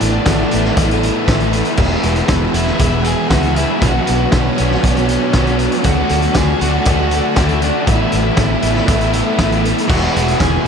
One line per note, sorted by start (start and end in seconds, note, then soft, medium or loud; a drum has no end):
0.00 0.17 A1 medium
0.00 0.51 A2 medium
0.00 0.25 E3 loud
0.00 0.25 A3 loud
0.00 1.75 A3 medium
0.00 0.27 B3 loud
0.00 0.71 D4 medium
0.00 0.28 E4 loud
0.00 1.78 E5 medium
0.00 5.81 B5 medium
0.00 3.79 E6 medium
0.00 closed hi-hat medium
0.25 0.43 A1 medium
0.25 0.76 E3 medium
0.25 0.54 A3 medium
0.25 0.53 B3 medium
0.25 0.51 E4 loud
0.25 kick loud
0.25 snare loud
0.25 closed hi-hat loud
0.51 0.70 A1 medium
0.51 0.77 A3 medium
0.51 0.77 B3 medium
0.51 0.78 E4 medium
0.51 closed hi-hat medium
0.65 snare soft
0.76 1.10 A1 loud
0.76 1.53 A2 loud
0.76 1.25 E3 loud
0.76 1.26 A3 loud
0.76 1.28 B3 medium
0.76 1.28 E4 loud
0.76 kick loud
0.76 closed hi-hat loud
0.91 closed hi-hat soft
1.03 closed hi-hat medium
1.26 1.60 A1 loud
1.26 1.76 E3 medium
1.26 1.77 A3 medium
1.26 1.79 B3 medium
1.26 1.78 E4 medium
1.26 kick loud
1.26 snare loud
1.26 closed hi-hat loud
1.40 closed hi-hat soft
1.52 1.78 A3 medium
1.52 1.80 B3 medium
1.52 1.76 E4 medium
1.52 closed hi-hat medium
1.65 closed hi-hat soft
1.75 1.95 E1 medium
1.75 2.54 E2 loud
1.75 2.54 B2 loud
1.75 2.28 E3 loud
1.75 2.29 G#3 loud
1.75 3.78 G#4 medium
1.75 3.78 F#5 medium
1.75 kick loud
1.75 crash loud
1.80 2.31 B3 loud
1.80 2.30 E4 loud
2.03 2.20 E1 medium
2.03 closed hi-hat medium
2.16 closed hi-hat soft
2.28 2.46 E1 loud
2.28 2.55 E3 medium
2.28 2.55 G#3 medium
2.28 2.55 B3 medium
2.28 2.52 E4 medium
2.28 kick loud
2.28 snare loud
2.28 closed hi-hat loud
2.53 2.70 E1 medium
2.53 2.80 E3 medium
2.53 2.81 G#3 medium
2.53 2.81 B3 medium
2.53 2.82 E4 medium
2.53 2.78 E4 loud
2.53 closed hi-hat medium
2.67 snare soft
2.79 3.13 E1 loud
2.79 3.56 E2 loud
2.79 3.56 B2 loud
2.79 3.27 E3 medium
2.79 3.29 G#3 loud
2.79 3.30 B3 loud
2.79 3.06 E4 loud
2.79 kick loud
2.79 closed hi-hat loud
2.83 3.31 E4 loud
3.03 3.29 G#4 loud
3.03 closed hi-hat medium
3.28 3.64 C#2 loud
3.28 3.79 E3 medium
3.28 3.80 G#3 medium
3.28 3.80 B3 medium
3.28 3.81 E4 medium
3.28 3.56 F#4 loud
3.28 kick loud
3.28 snare loud
3.28 closed hi-hat loud
3.43 closed hi-hat medium
3.55 3.81 B3 medium
3.55 3.82 E4 medium
3.55 3.81 E4 medium
3.55 closed hi-hat medium
3.59 3.81 E3 medium
3.59 3.81 G#3 medium
3.80 3.98 B1 medium
3.80 4.57 B2 medium
3.80 4.31 F#3 loud
3.80 4.32 B3 loud
3.80 4.33 F#4 loud
3.80 5.81 F#4 medium
3.80 5.82 B4 medium
3.80 7.83 D6 medium
3.80 kick loud
3.80 closed hi-hat loud
3.84 4.34 D4 loud
3.84 4.35 F#4 loud
4.07 4.25 B1 medium
4.07 closed hi-hat medium
4.31 4.49 B1 loud
4.31 4.82 F#3 medium
4.31 4.59 B3 medium
4.31 5.54 C#4 medium
4.31 4.58 D4 medium
4.31 kick loud
4.31 snare loud
4.31 closed hi-hat loud
4.35 4.56 F#4 loud
4.56 4.75 B1 medium
4.56 4.82 B3 medium
4.56 4.83 D4 medium
4.56 4.84 F#4 medium
4.56 closed hi-hat medium
4.72 snare soft
4.82 5.16 B1 loud
4.82 5.59 B2 loud
4.82 5.32 F#3 loud
4.82 5.33 B3 loud
4.82 5.34 D4 loud
4.82 5.35 F#4 loud
4.82 kick loud
4.82 closed hi-hat loud
4.97 closed hi-hat medium
5.09 closed hi-hat medium
5.33 5.67 B1 loud
5.33 5.82 F#3 medium
5.33 5.83 B3 medium
5.33 5.83 D4 medium
5.33 5.84 F#4 medium
5.33 kick loud
5.33 snare loud
5.33 closed hi-hat loud
5.47 closed hi-hat medium
5.59 5.84 D4 medium
5.59 5.83 F#4 medium
5.59 closed hi-hat medium
5.63 5.85 B3 medium
5.72 closed hi-hat medium
5.82 6.01 D2 loud
5.82 6.33 D3 loud
5.82 6.35 A3 loud
5.82 6.35 D4 loud
5.82 7.84 F#4 medium
5.82 6.37 F#4 loud
5.82 7.84 D5 medium
5.82 7.84 A5 medium
5.82 kick loud
5.82 closed hi-hat loud
5.86 6.37 F#4 loud
6.09 6.26 D2 loud
6.09 closed hi-hat medium
6.22 closed hi-hat soft
6.34 6.52 D2 medium
6.34 6.83 D3 medium
6.34 6.63 A3 medium
6.34 6.60 D4 medium
6.34 6.58 F#4 medium
6.34 6.60 G#4 loud
6.34 kick loud
6.34 snare loud
6.34 closed hi-hat loud
6.59 6.77 D2 medium
6.59 6.85 A3 medium
6.59 6.85 D4 medium
6.59 6.87 F#4 medium
6.59 7.39 F#4 loud
6.59 closed hi-hat medium
6.85 7.19 D2 loud
6.85 7.35 D3 loud
6.85 7.36 A3 loud
6.85 7.37 D4 loud
6.85 7.38 F#4 loud
6.85 kick loud
6.85 closed hi-hat loud
7.11 closed hi-hat medium
7.36 7.69 D2 loud
7.36 7.85 D3 medium
7.36 7.86 A3 medium
7.36 7.87 D4 medium
7.36 7.61 E4 medium
7.36 7.87 F#4 medium
7.36 kick loud
7.36 snare loud
7.36 closed hi-hat loud
7.49 closed hi-hat medium
7.61 7.87 A3 medium
7.61 7.86 D4 medium
7.61 7.88 D4 medium
7.61 7.85 F#4 medium
7.61 closed hi-hat medium
7.87 8.04 A1 medium
7.87 8.63 A2 loud
7.87 8.37 E3 loud
7.87 8.37 A3 loud
7.87 8.39 B3 loud
7.87 9.61 E4 medium
7.87 8.40 E4 loud
7.87 9.88 A4 medium
7.87 9.88 E5 medium
7.87 10.68 B5 medium
7.87 10.68 E6 medium
7.87 kick loud
7.87 closed hi-hat loud
8.12 8.29 A1 medium
8.12 closed hi-hat medium
8.37 8.54 A1 medium
8.37 8.88 E3 medium
8.37 8.65 A3 medium
8.37 8.64 B3 medium
8.37 8.62 E4 medium
8.37 kick loud
8.37 snare loud
8.37 closed hi-hat loud
8.62 8.79 A1 medium
8.62 8.88 A3 medium
8.62 8.90 B3 medium
8.62 8.89 E4 medium
8.62 closed hi-hat medium
8.75 snare soft
8.87 9.21 A1 medium
8.87 9.64 A2 loud
8.87 9.36 E3 medium
8.87 9.37 A3 loud
8.87 9.39 B3 loud
8.87 9.39 E4 loud
8.87 kick loud
8.87 closed hi-hat loud
9.01 closed hi-hat medium
9.13 closed hi-hat medium
9.37 9.72 A1 loud
9.37 9.87 E3 medium
9.37 9.88 A3 medium
9.37 9.89 B3 medium
9.37 9.89 E4 medium
9.37 kick loud
9.37 snare loud
9.37 closed hi-hat loud
9.52 closed hi-hat medium
9.64 9.89 A3 medium
9.64 9.90 B3 medium
9.64 9.88 E4 medium
9.64 closed hi-hat medium
9.78 closed hi-hat medium
9.87 10.06 E1 medium
9.87 10.65 E2 loud
9.87 10.65 B2 medium
9.87 10.38 E3 loud
9.87 10.40 G#3 loud
9.87 10.41 B3 loud
9.87 10.42 E4 loud
9.87 10.13 F#4 loud
9.87 10.68 G#4 medium
9.87 10.68 F#5 medium
9.87 kick loud
9.87 crash loud
10.14 10.32 E1 loud
10.14 10.39 F#4 loud
10.14 closed hi-hat medium
10.28 closed hi-hat medium
10.39 10.57 E1 medium
10.39 10.66 E3 medium
10.39 10.65 G#3 medium
10.39 10.65 B3 medium
10.39 10.63 E4 medium
10.39 10.68 G#4 loud
10.39 kick loud
10.39 snare loud
10.39 closed hi-hat loud
10.64 10.68 E4 medium